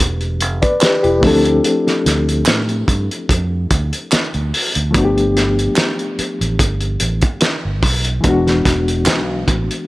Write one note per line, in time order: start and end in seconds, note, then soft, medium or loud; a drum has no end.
0.00 0.41 E1 medium
0.00 1.17 E3 medium
0.00 1.18 A3 medium
0.00 1.19 B3 medium
0.00 1.20 D4 medium
0.00 0.38 G4 medium
0.00 1.24 G#4 soft
0.00 0.63 B4 medium
0.00 closed hi-hat medium
0.21 closed hi-hat soft
0.41 0.60 F1 loud
0.41 closed hi-hat medium
0.62 0.80 B4 medium
0.62 0.80 D5 medium
0.62 kick medium
0.62 closed hi-hat soft
0.81 1.02 G4 medium
0.81 1.03 B4 medium
0.81 snare loud
0.81 clap medium
0.81 closed hi-hat medium
1.03 1.21 E1 medium
1.03 1.43 E4 medium
1.03 1.43 G4 medium
1.03 closed hi-hat soft
1.19 1.59 D2 medium
1.19 1.28 E3 medium
1.19 4.48 A3 medium
1.19 4.49 C4 medium
1.19 kick loud
1.24 4.51 F3 medium
1.24 4.50 D4 medium
1.24 4.51 A4 medium
1.24 open hi-hat medium
1.45 closed hi-hat medium
1.64 closed hi-hat medium
1.87 snare soft
1.87 closed hi-hat soft
2.06 2.42 D2 loud
2.06 snare soft
2.06 closed hi-hat medium
2.29 closed hi-hat soft
2.46 2.83 A2 medium
2.46 snare loud
2.46 clap medium
2.46 closed hi-hat medium
2.69 closed hi-hat soft
2.88 3.08 G2 medium
2.88 kick medium
2.88 closed hi-hat medium
3.11 closed hi-hat soft
3.29 3.66 F2 medium
3.29 kick medium
3.29 closed hi-hat medium
3.71 3.90 D2 medium
3.71 kick medium
3.71 closed hi-hat medium
3.93 closed hi-hat soft
4.12 muted fingered electric bass stroke soft
4.12 snare medium
4.12 clap medium
4.12 closed hi-hat medium
4.34 4.51 D2 medium
4.34 closed hi-hat soft
4.54 open hi-hat medium
4.75 4.92 D2 medium
4.75 closed hi-hat medium
4.91 8.19 F3 medium
4.91 8.19 A3 medium
4.91 8.20 B3 medium
4.91 kick loud
4.91 closed hi-hat medium
4.95 5.67 G1 loud
4.95 8.21 D4 medium
4.95 5.03 F#4 medium
5.05 8.25 G4 medium
5.18 closed hi-hat soft
5.37 snare soft
5.37 closed hi-hat medium
5.59 closed hi-hat soft
5.76 snare loud
5.76 clap medium
5.76 closed hi-hat medium
5.99 closed hi-hat soft
6.19 muted fingered electric bass stroke soft
6.19 closed hi-hat medium
6.41 6.57 A1 medium
6.41 closed hi-hat soft
6.59 6.96 G1 medium
6.59 kick medium
6.59 closed hi-hat medium
6.81 closed hi-hat soft
7.00 7.20 A1 medium
7.00 closed hi-hat medium
7.21 kick medium
7.21 closed hi-hat soft
7.41 snare medium
7.41 clap medium
7.41 closed hi-hat medium
7.65 7.83 G1 medium
7.83 8.19 B1 medium
7.83 kick medium
7.83 open hi-hat medium
8.05 closed hi-hat medium
8.21 9.87 E3 medium
8.21 9.87 G#3 medium
8.21 kick loud
8.21 closed hi-hat medium
8.25 8.61 E1 medium
8.25 9.87 B3 medium
8.25 9.87 D4 medium
8.25 9.87 F#4 medium
8.47 snare soft
8.47 closed hi-hat soft
8.65 9.07 E1 medium
8.65 kick medium
8.65 snare soft
8.65 closed hi-hat medium
8.88 closed hi-hat soft
9.06 9.43 B1 medium
9.06 snare loud
9.06 clap medium
9.06 closed hi-hat medium
9.48 9.68 A1 medium
9.48 kick medium
9.48 closed hi-hat medium
9.71 closed hi-hat soft